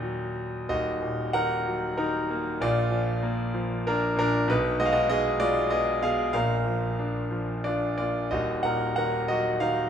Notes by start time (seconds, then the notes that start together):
Already playing: D#2 A#2 D#3 F#4 D#5
0.03 F#3
0.69 D#1 D#2 F#4 D#5
1.02 A#2
1.33 D#3 A#4 F#5
1.66 F#3
1.97 D#3 D#4 A#4
2.30 A#3
2.61 A#1 A#2 F4 D5
2.91 F3
3.23 A#3
3.54 F3
3.87 A#3 D4 A#4
4.16 A#2 D4 A#4
4.48 B1 B2 D#4 B4
4.79 G#3 F#4 D#5
4.85 F5
4.93 F#4 D#5
5.09 B3 G#4 D#5
5.39 G#3 F4 D5
5.70 B3 G#4 D#5
6.03 B2 G#4 F5
6.33 A#1 A#2 A#4 F5
6.66 F3
6.99 D4
7.31 F3
7.64 D4 F4 D5
7.98 A#2 F4 D5
8.31 D#1 D#2 F#4 D#5
8.63 A#2 A#4 F#5
8.96 D#3 A#4 F#5
9.28 F#3 F#4 D#5
9.60 D#3 A#4 F5